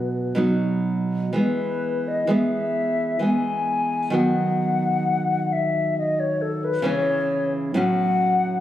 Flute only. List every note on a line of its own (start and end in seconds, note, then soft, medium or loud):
0.00 0.39 B4 medium
1.36 2.09 B4 medium
2.08 2.32 D#5 medium
2.31 3.23 E5 medium
3.22 4.13 G#5 medium
4.14 5.54 F#5 medium
5.52 5.98 E5 medium
5.98 6.21 D#5 medium
6.20 6.43 C#5 medium
6.42 6.66 A4 medium
6.64 6.89 B4 medium
6.87 7.51 C#5 medium
7.77 8.60 F#5 medium